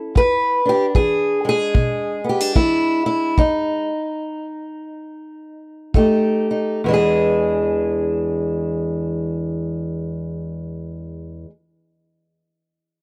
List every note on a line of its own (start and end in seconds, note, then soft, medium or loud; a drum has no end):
0.00 0.10 E3 medium
0.00 0.13 C#4 soft
0.00 0.65 E4 soft
0.00 0.17 A4 medium
0.15 0.89 E2 medium
0.15 0.69 B4 loud
0.15 kick medium
0.65 2.24 D4 medium
0.65 0.85 G4 medium
0.95 1.69 E3 medium
0.95 1.48 G#4 loud
0.95 kick medium
1.45 3.89 G#3 medium
1.49 2.29 G#4 loud
1.74 2.49 B2 medium
1.74 kick medium
2.24 2.41 B3 soft
2.29 2.55 G4 medium
2.41 3.38 D4 soft
2.56 3.32 E3 medium
2.56 3.05 E4 medium
2.56 kick medium
3.06 3.38 E4 medium
3.38 4.08 E2 medium
3.38 5.95 D#4 medium
3.38 kick medium
5.94 6.77 F2 medium
5.94 6.81 A3 medium
5.94 6.49 D#4 medium
5.94 6.81 G4 medium
5.94 kick medium
6.51 6.81 D#4 soft
6.84 11.44 E2 medium
6.84 11.46 E3 medium
6.88 11.48 G#3 medium
6.88 11.50 D4 medium
6.94 11.50 G#4 medium